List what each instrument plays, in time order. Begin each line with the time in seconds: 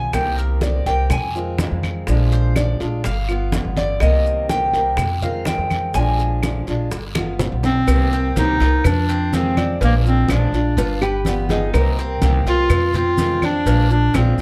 Already playing: upright bass B1, steel-string acoustic guitar G3 B3 F4, cuban tres G#5
0.13 upright bass C2, steel-string acoustic guitar C3 D#3 A#3 C4 G4, cuban tres G5, high bongo, high conga, long guiro, claves, maracas
0.38 cuban tres A#4, high conga, maracas
0.61 steel-string acoustic guitar D#3 A#3 C4 G4, cuban tres D5, high bongo, high conga, short guiro, maracas
0.86 upright bass C2, steel-string acoustic guitar D#3 A#3 C4 G4, cuban tres G5, high conga, short guiro, maracas
1.10 upright bass F2, cuban tres G#5, muted steel-string acoustic guitar stroke, high bongo, high conga, low conga, long guiro, claves, maracas
1.35 steel-string acoustic guitar D#3 G#3 C4 F4, high conga, maracas
1.58 steel-string acoustic guitar D#3 G#3 C4 F4, high bongo, low bongo, high conga, short guiro, maracas
1.71 upright bass F2
1.83 high conga, short guiro, claves, maracas
2.07 upright bass A#1, steel-string acoustic guitar F3 G#3 D4 F4, high bongo, high conga, long guiro, maracas
2.32 cuban tres C5, high bongo, high conga, maracas
2.56 steel-string acoustic guitar F3 G#3 D4 F4, cuban tres D5, high bongo, high conga, short guiro, claves, maracas
2.80 upright bass A#1, steel-string acoustic guitar G#3 D4 F4, high bongo, short guiro, maracas
3.04 upright bass G1, cuban tres F5, muted steel-string acoustic guitar stroke, high bongo, high conga, long guiro, maracas
3.28 steel-string acoustic guitar B3 F4, high conga, claves, maracas
3.52 steel-string acoustic guitar G3 B3 F4, high bongo, low bongo, high conga, short guiro, maracas
3.65 upright bass G1
3.76 cuban tres D5, high bongo, high conga, short guiro, maracas
4.00 upright bass C2, steel-string acoustic guitar C3 D#3 A#3 C4 G4, cuban tres D#5, high bongo, high conga, long guiro, claves, maracas
4.26 high conga, maracas
4.49 steel-string acoustic guitar D#3 A#3 C4 G4, cuban tres G5, high bongo, high conga, short guiro, maracas
4.73 upright bass C2, steel-string acoustic guitar D#3 A#3 C4 G4, high conga, short guiro, maracas
4.97 upright bass F2, muted steel-string acoustic guitar stroke, high bongo, high conga, low conga, long guiro, claves, maracas
5.22 steel-string acoustic guitar D#3 G#3 C4 F4, cuban tres F5, high conga, low conga, maracas
5.45 steel-string acoustic guitar D#3 G#3 C4 F4, cuban tres G5, high bongo, low bongo, high conga, short guiro, maracas
5.58 upright bass F2
5.70 high conga, short guiro, claves, maracas
5.94 upright bass A#1, steel-string acoustic guitar F3 G#3 D4 F4, cuban tres G#5, high bongo, high conga, long guiro, maracas
6.19 high bongo, high conga, maracas
6.43 steel-string acoustic guitar F3 G#3 D4 F4, high bongo, high conga, short guiro, claves, maracas
6.67 upright bass A#1, steel-string acoustic guitar G#3 D4 F4, high bongo, short guiro, maracas
6.91 upright bass G1, muted steel-string acoustic guitar stroke, high bongo, high conga, long guiro, maracas
7.15 steel-string acoustic guitar B3 F4, high bongo, high conga, claves, maracas
7.39 steel-string acoustic guitar G3 B3 F4, low conga, short guiro, maracas
7.52 upright bass B1
7.63 clarinet C4, low bongo, low conga, short guiro, maracas
7.88 upright bass C2, steel-string acoustic guitar C3 D#3 A#3 C4 G4, cowbell, long guiro, claves, maracas
8.12 steel-string acoustic guitar A#3 C4 G4, cuban tres C4, high conga, maracas
8.36 upright bass C2, steel-string acoustic guitar C3 D#3 A#3 C4 G4, clarinet D#4, cowbell, high conga, short guiro, maracas
8.60 upright bass C2, steel-string acoustic guitar A#3 C4 G4, cuban tres F4, cowbell, high conga, short guiro, maracas
8.84 upright bass F2, clarinet D4, muted steel-string acoustic guitar stroke, cowbell, high conga, low conga, long guiro, claves, maracas
9.09 cuban tres C4, cowbell, high conga, maracas
9.32 steel-string acoustic guitar C3 D#3 G#3 C4 F4, clarinet C4, cowbell, high conga, short guiro, maracas
9.56 steel-string acoustic guitar G#3 C4 F4, cuban tres D4, high conga, short guiro, claves, maracas
9.80 upright bass A#1, steel-string acoustic guitar F3 G#3 D4 F4, cuban tres A#3, cowbell, high conga, long guiro, maracas
9.84 clarinet A#3
10.05 steel-string acoustic guitar G#3 D4 F4, clarinet C4, high conga, maracas
10.28 upright bass A#1, steel-string acoustic guitar F3 G#3 D4 F4, cuban tres D4, clarinet D4, cowbell, high conga, short guiro, claves, maracas
10.52 upright bass A#1, steel-string acoustic guitar G#3 D4 F4, short guiro, maracas
10.77 upright bass G1, cuban tres F4, nylon-string guitar F4, muted steel-string acoustic guitar stroke, cowbell, high conga, long guiro, maracas
11.01 nylon-string guitar G4, cuban tres B4, high conga, claves, maracas
11.25 steel-string acoustic guitar G3 B3 F4, cowbell, high conga, short guiro, maracas
11.49 steel-string acoustic guitar B3 F4, cuban tres D#4, nylon-string guitar G#4, cowbell, high conga, short guiro, maracas
11.73 upright bass C2, steel-string acoustic guitar C3 D#3 A#3 C4 G4, nylon-string guitar A#4, cowbell, high conga, long guiro, claves, maracas
11.98 steel-string acoustic guitar A#3 C4 G4, cuban tres C4, high conga, maracas
12.22 upright bass C2, steel-string acoustic guitar C3 D#3 A#3 C4 G4, cowbell, high conga, short guiro, maracas
12.46 upright bass C2, steel-string acoustic guitar A#3 C4 G4, cuban tres F4, clarinet F4, cowbell, high conga, short guiro, maracas
12.69 upright bass F2, muted steel-string acoustic guitar stroke, cowbell, high conga, low conga, long guiro, claves, maracas
12.93 cuban tres C4, clarinet F4, cowbell, high conga, low conga, maracas
13.18 steel-string acoustic guitar C3 D#3 G#3 C4 F4, cowbell, high conga, short guiro, maracas
13.42 steel-string acoustic guitar G#3 C4 F4, cuban tres D4, clarinet D4, high conga, short guiro, claves, maracas
13.66 upright bass A#1, steel-string acoustic guitar F3 G#3 D4 F4, cuban tres A#3, cowbell, high conga, long guiro, maracas
13.90 steel-string acoustic guitar G#3 D4 F4, clarinet D4, high conga, maracas
14.14 upright bass A#1, steel-string acoustic guitar F3 G#3 D4 F4, clarinet C4, cuban tres D4, cowbell, high conga, short guiro, claves, maracas
14.37 upright bass A#1, steel-string acoustic guitar D4 F4, maracas